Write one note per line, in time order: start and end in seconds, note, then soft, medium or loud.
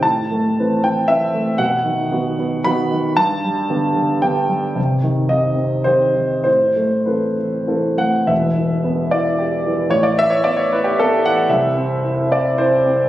0.03 1.55 A2 medium
0.03 0.81 A5 medium
0.31 0.72 A3 soft
0.59 0.81 E3 soft
0.59 0.81 C4 soft
0.59 0.81 B4 medium
0.84 1.07 E3 soft
0.84 1.09 G5 medium
1.08 1.31 E3 medium
1.08 1.31 C4 medium
1.08 1.31 B4 medium
1.08 1.59 E5 loud
1.34 1.59 A3 soft
1.58 3.13 B2 medium
1.58 2.63 F#5 loud
1.84 2.10 D#3 medium
2.11 2.35 D#3 soft
2.11 2.35 B3 medium
2.11 2.35 F#4 medium
2.39 2.64 B3 medium
2.64 2.88 D#3 medium
2.64 2.88 B3 medium
2.64 2.89 F#4 medium
2.64 3.17 B5 loud
2.92 3.17 D#3 medium
3.17 4.74 G2 medium
3.17 4.23 A5 loud
3.44 3.86 G3 medium
3.69 3.94 D3 medium
3.69 3.94 B3 medium
3.69 3.94 G4 medium
3.96 4.21 D3 soft
4.22 4.47 D3 medium
4.22 4.47 B3 medium
4.22 4.47 G4 medium
4.22 4.77 G5 medium
4.48 4.76 G3 medium
4.75 6.42 C3 medium
5.03 5.27 D#3 medium
5.29 5.55 D#3 soft
5.29 5.54 C4 soft
5.29 5.56 G4 soft
5.29 5.86 D#5 medium
5.55 5.84 C4 soft
5.84 6.12 D#3 soft
5.84 6.12 C4 soft
5.84 6.13 G4 medium
5.84 6.42 C5 medium
6.15 6.46 D#3 soft
6.44 8.26 A2 medium
6.44 7.07 C5 medium
6.76 7.27 A3 soft
7.06 7.36 E3 soft
7.06 7.36 C4 soft
7.06 7.36 A4 soft
7.06 8.00 B4 medium
7.37 7.66 E3 soft
7.67 7.96 E3 soft
7.67 7.96 C4 soft
7.67 7.97 A4 soft
7.98 8.29 A3 soft
7.98 8.29 F#5 medium
8.27 9.87 E1 medium
8.27 9.87 E2 medium
8.27 9.11 E5 medium
8.58 9.02 E3 medium
8.84 9.28 B3 soft
9.11 9.56 E4 medium
9.11 9.92 D5 medium
9.39 9.82 G4 medium
9.67 9.93 E3 medium
9.90 11.45 A1 medium
9.90 11.45 A2 medium
9.90 10.05 C#5 loud
10.03 10.18 D5 medium
10.19 10.62 E3 medium
10.19 10.33 E5 loud
10.30 10.45 C#5 loud
10.44 10.87 B3 medium
10.44 10.58 D5 loud
10.57 10.71 C#5 loud
10.72 11.14 E4 medium
10.72 10.86 B4 medium
10.84 10.98 G4 loud
10.99 11.40 B3 medium
10.99 11.25 A4 loud
11.25 11.51 E3 medium
11.25 11.51 F#5 loud
11.49 13.09 C2 medium
11.49 13.09 C3 medium
11.49 12.31 E5 medium
11.77 12.20 C4 medium
12.04 12.48 E4 soft
12.31 12.75 C4 medium
12.31 12.59 D5 medium
12.58 13.03 E4 medium
12.58 13.09 C5 medium
12.86 13.09 C4 soft